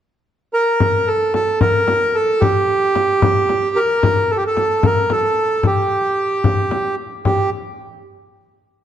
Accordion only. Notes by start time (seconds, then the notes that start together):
0.54 A#4
1.08 A4
1.35 A4
1.61 A#4
2.15 A4
2.41 G4
3.76 A#4
4.31 A4
4.37 G4
4.47 A4
4.86 A#4
5.12 A4
5.67 G4
7.26 G4